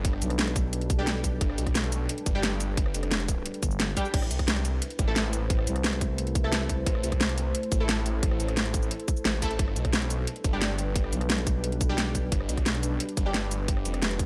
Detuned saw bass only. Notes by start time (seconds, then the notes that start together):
Already playing: G1
1.41 G1
1.58 B1
2.26 G1
2.43 G1
2.94 F1
4.14 A1
4.31 C2
4.99 A1
5.16 A1
6.86 A1
7.04 C2
7.72 A1
7.89 A1
8.40 A1
9.25 A1
9.59 G1
9.76 B1
10.44 G1
10.62 G1
12.32 G1
12.49 B1
13.17 G1
13.34 G1
13.85 F1